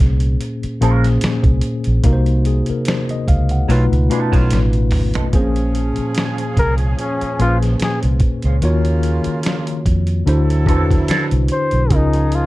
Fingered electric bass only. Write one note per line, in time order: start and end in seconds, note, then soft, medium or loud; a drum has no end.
0.00 0.35 C2 loud
0.64 muted fingered electric bass stroke soft
0.82 1.18 A#1 medium
1.23 muted fingered electric bass stroke soft
1.44 1.60 C2 medium
1.87 2.03 A#1 medium
2.04 2.61 C2 loud
2.70 muted fingered electric bass stroke soft
3.28 3.64 C#2 medium
3.69 3.89 B1 loud
3.92 4.08 C#2 medium
4.33 4.49 B1 medium
4.52 4.93 A1 medium
4.93 5.13 G#1 medium
5.34 5.90 A#1 loud
5.98 muted fingered electric bass stroke soft
6.57 6.93 C2 medium
7.22 muted fingered electric bass stroke soft
7.39 7.75 A#1 medium
7.81 muted fingered electric bass stroke soft
8.04 8.19 C2 medium
8.44 8.60 C#2 medium
8.62 9.19 D#2 loud
9.26 muted fingered electric bass stroke soft
9.86 10.22 F2 medium
10.27 10.67 D2 loud
10.67 11.03 E2 medium
11.09 muted fingered electric bass stroke soft
11.32 11.48 C2 medium
11.73 11.91 B1 medium
11.91 12.46 C#2 loud